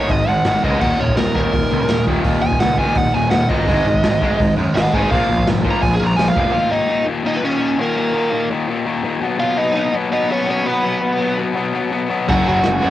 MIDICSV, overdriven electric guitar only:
0, 0, Header, 1, 2, 480
1, 0, Start_track
1, 0, Key_signature, -6, "minor"
1, 0, Tempo, 358637
1, 1089, Time_signature, 4, 2, 24, 8
1, 17267, End_track
2, 0, Start_track
2, 0, Title_t, "Overdriven electric guitar"
2, 0, Program_c, 0, 29
2, 0, Note_on_c, 0, 73, 96
2, 137, Note_off_c, 0, 73, 0
2, 137, Note_on_c, 0, 75, 92
2, 378, Note_off_c, 0, 75, 0
2, 378, Note_on_c, 0, 78, 93
2, 839, Note_off_c, 0, 78, 0
2, 860, Note_on_c, 0, 75, 89
2, 1075, Note_off_c, 0, 75, 0
2, 1080, Note_on_c, 0, 78, 96
2, 1317, Note_off_c, 0, 78, 0
2, 1340, Note_on_c, 0, 73, 93
2, 1557, Note_off_c, 0, 73, 0
2, 1563, Note_on_c, 0, 70, 78
2, 1798, Note_off_c, 0, 70, 0
2, 1814, Note_on_c, 0, 70, 104
2, 2741, Note_off_c, 0, 70, 0
2, 3236, Note_on_c, 0, 80, 119
2, 3473, Note_off_c, 0, 80, 0
2, 3481, Note_on_c, 0, 78, 93
2, 3716, Note_off_c, 0, 78, 0
2, 3731, Note_on_c, 0, 80, 94
2, 3977, Note_off_c, 0, 80, 0
2, 3977, Note_on_c, 0, 78, 101
2, 4197, Note_off_c, 0, 78, 0
2, 4197, Note_on_c, 0, 80, 83
2, 4414, Note_off_c, 0, 80, 0
2, 4419, Note_on_c, 0, 78, 98
2, 4666, Note_off_c, 0, 78, 0
2, 4666, Note_on_c, 0, 75, 92
2, 6069, Note_off_c, 0, 75, 0
2, 6347, Note_on_c, 0, 75, 87
2, 6363, Note_on_c, 0, 78, 95
2, 6593, Note_off_c, 0, 75, 0
2, 6597, Note_on_c, 0, 71, 85
2, 6607, Note_off_c, 0, 78, 0
2, 6607, Note_on_c, 0, 80, 92
2, 6834, Note_off_c, 0, 80, 0
2, 6838, Note_off_c, 0, 71, 0
2, 6839, Note_on_c, 0, 77, 109
2, 7304, Note_off_c, 0, 77, 0
2, 7639, Note_on_c, 0, 82, 109
2, 7788, Note_off_c, 0, 82, 0
2, 7793, Note_on_c, 0, 80, 101
2, 7946, Note_on_c, 0, 68, 92
2, 7950, Note_off_c, 0, 80, 0
2, 8106, Note_off_c, 0, 68, 0
2, 8118, Note_on_c, 0, 82, 90
2, 8250, Note_off_c, 0, 82, 0
2, 8250, Note_on_c, 0, 80, 88
2, 8409, Note_off_c, 0, 80, 0
2, 8409, Note_on_c, 0, 77, 110
2, 8714, Note_off_c, 0, 77, 0
2, 8730, Note_on_c, 0, 77, 115
2, 8753, Note_on_c, 0, 65, 89
2, 8977, Note_off_c, 0, 65, 0
2, 8984, Note_on_c, 0, 75, 106
2, 8990, Note_off_c, 0, 77, 0
2, 8992, Note_on_c, 0, 63, 84
2, 9435, Note_off_c, 0, 75, 0
2, 9439, Note_off_c, 0, 63, 0
2, 9726, Note_on_c, 0, 63, 81
2, 9732, Note_on_c, 0, 75, 92
2, 9851, Note_off_c, 0, 75, 0
2, 9857, Note_on_c, 0, 71, 75
2, 9858, Note_off_c, 0, 63, 0
2, 9969, Note_on_c, 0, 61, 70
2, 9972, Note_off_c, 0, 71, 0
2, 9972, Note_on_c, 0, 73, 79
2, 10409, Note_off_c, 0, 61, 0
2, 10440, Note_off_c, 0, 73, 0
2, 10453, Note_on_c, 0, 58, 67
2, 10459, Note_on_c, 0, 70, 89
2, 11350, Note_off_c, 0, 58, 0
2, 11354, Note_off_c, 0, 70, 0
2, 12580, Note_on_c, 0, 77, 104
2, 12598, Note_on_c, 0, 65, 86
2, 12817, Note_off_c, 0, 77, 0
2, 12817, Note_on_c, 0, 75, 105
2, 12821, Note_off_c, 0, 65, 0
2, 12832, Note_on_c, 0, 63, 82
2, 13282, Note_off_c, 0, 63, 0
2, 13308, Note_off_c, 0, 75, 0
2, 13553, Note_on_c, 0, 63, 82
2, 13555, Note_on_c, 0, 75, 98
2, 13782, Note_off_c, 0, 63, 0
2, 13803, Note_off_c, 0, 75, 0
2, 13809, Note_on_c, 0, 73, 86
2, 13817, Note_on_c, 0, 61, 68
2, 14033, Note_off_c, 0, 61, 0
2, 14048, Note_off_c, 0, 73, 0
2, 14055, Note_on_c, 0, 61, 73
2, 14064, Note_on_c, 0, 73, 91
2, 14260, Note_on_c, 0, 59, 59
2, 14268, Note_off_c, 0, 73, 0
2, 14268, Note_on_c, 0, 71, 71
2, 14273, Note_off_c, 0, 61, 0
2, 15183, Note_off_c, 0, 59, 0
2, 15237, Note_off_c, 0, 71, 0
2, 16459, Note_on_c, 0, 78, 101
2, 16466, Note_on_c, 0, 66, 80
2, 16683, Note_off_c, 0, 66, 0
2, 16689, Note_off_c, 0, 78, 0
2, 16707, Note_on_c, 0, 66, 83
2, 16708, Note_on_c, 0, 78, 92
2, 17267, Note_off_c, 0, 66, 0
2, 17267, Note_off_c, 0, 78, 0
2, 17267, End_track
0, 0, End_of_file